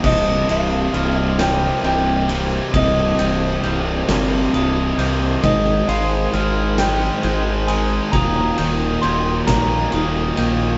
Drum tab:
CC |x-----|------|------|------|
RD |-xxxxx|xxxxxx|xxxxxx|xxxxxx|
SD |---o--|---o--|---o--|---o--|
BD |o-----|o-----|o-----|o--o--|